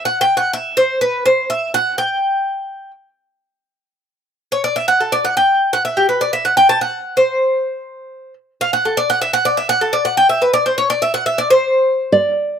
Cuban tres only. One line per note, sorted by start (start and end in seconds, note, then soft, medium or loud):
0.05 0.21 F#5 medium
0.21 0.37 G5 loud
0.37 0.53 F#5 medium
0.53 0.77 E5 loud
0.77 1.01 C5 loud
1.01 1.25 B4 medium
1.26 1.49 C5 loud
1.50 1.73 E5 medium
1.74 1.98 F#5 loud
1.98 2.91 G5 medium
4.52 4.64 C#5 medium
4.64 4.76 D5 loud
4.76 4.88 E5 medium
4.88 5.00 F#5 loud
5.00 5.12 A4 medium
5.12 5.24 D5 medium
5.25 5.36 F#5 medium
5.37 5.70 G5 medium
5.73 5.84 F#5 loud
5.85 5.96 E5 medium
5.97 6.08 G4 medium
6.09 6.20 B4 medium
6.21 6.33 D5 medium
6.33 6.45 E5 loud
6.45 6.57 F#5 medium
6.57 6.69 G5 loud
6.69 6.81 A5 loud
6.81 7.15 F#5 medium
7.17 8.33 C5 medium
8.61 8.73 F5 loud
8.73 8.85 F#5 loud
8.85 8.97 A4 medium
8.97 9.09 D5 loud
9.10 9.21 F#5 loud
9.22 9.33 E5 loud
9.33 9.45 F#5 loud
9.45 9.57 D5 loud
9.57 9.69 E5 medium
9.69 9.81 F#5 loud
9.81 9.93 A4 medium
9.93 10.05 D5 loud
10.05 10.17 F#5 medium
10.17 10.29 G5 loud
10.29 10.41 E5 medium
10.42 10.53 B4 medium
10.53 10.65 D5 loud
10.66 10.77 C5 medium
10.78 10.89 C#5 medium
10.90 11.02 D5 loud
11.02 11.14 E5 medium
11.14 11.26 F#5 loud
11.26 11.38 E5 loud
11.38 11.50 D5 loud
11.50 12.18 C5 medium